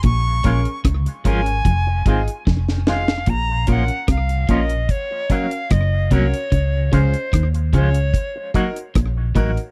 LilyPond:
<<
  \new Staff \with { instrumentName = "Flute" } { \time 4/4 \key bes \minor \tempo 4 = 74 des'''4 r8 aes''4. r8 f''8 | bes''8 ges''8 f''8 ees''8 des''8 f''8 ees''8 des''8~ | des''8 c''8 r8 des''4 r4. | }
  \new Staff \with { instrumentName = "Grand piano" } { \time 4/4 \key bes \minor r8 <des' aes' bes'>16 r8. <des' aes' bes'>16 <aes' bes'>16 r8 <ees' f' aes'>16 r8. <ees' f' aes'>16 r16 | r8 <des' f' bes'>16 r8. <des' f' bes'>16 r8. <des' ges' bes'>16 r8. <des' ges' bes'>16 r16 | r8 <des' f' aes'>16 r8. <des' f' aes'>16 r8. <ees' ges' bes'>16 r8. <ees' ges' bes'>16 r16 | }
  \new Staff \with { instrumentName = "Clean electric guitar" } { \time 4/4 \key bes \minor r8 <f aes des' f'>8 r8 <f aes des' f'>8 r8 <ees aes c' f'>8 r8 <ees aes c' f'>8 | r8 <f bes des' f'>8 r8 <f bes des' f'>8 r8 <ges bes des' ges'>8 r8 <ges bes des' ges'>8 | r8 <f aes des' f'>8 r8 <f aes des' f'>8 r8 <ges bes ees' ges'>8 r8 <ges bes ees' ges'>8 | }
  \new Staff \with { instrumentName = "Clean electric guitar" } { \clef bass \time 4/4 \key bes \minor bes,8 bes,16 r16 des16 r16 aes,8 f,8 aes,16 r16 f,8 r8 | bes,8 bes,16 r16 c8 bes,8 r4 ges,8 c16 r16 | des8 des16 r16 ees8 des8 r4 bes,8 a,16 r16 | }
  \new Staff \with { instrumentName = "Fingered electric bass" } { \clef bass \time 4/4 \key bes \minor bes,,8 bes,,16 r16 des,16 r16 aes,,8 f,,8 aes,,16 r16 f,,4 | bes,,8 bes,,16 r16 c,8 bes,,8 r4 ges,,8 c,16 r16 | des,8 des,16 r16 ees,8 des,8 r4 bes,,8 a,,16 r16 | }
  \new DrumStaff \with { instrumentName = "Drums" } \drummode { \time 4/4 <hh bd>8 <hh bd>16 hh16 <hh bd ss>16 hh16 <hh bd>16 hh16 <hh bd>8 <hh bd>16 hh16 <bd sn>16 sn16 sn16 sn16 | <hh bd>8 <hh bd>16 hh16 <hh bd ss>16 hh16 <hh bd>16 hh16 <hh bd>8 <hh bd>16 hh16 <hh bd ss>8 <hh bd>16 hh16 | <hh bd>8 <hh bd ss>16 hh16 <hh bd ss>16 hh16 <hh bd>16 hh16 <hh bd>8 <hh bd>16 hh16 <hh bd ss>8 <hh bd>16 hh16 | }
>>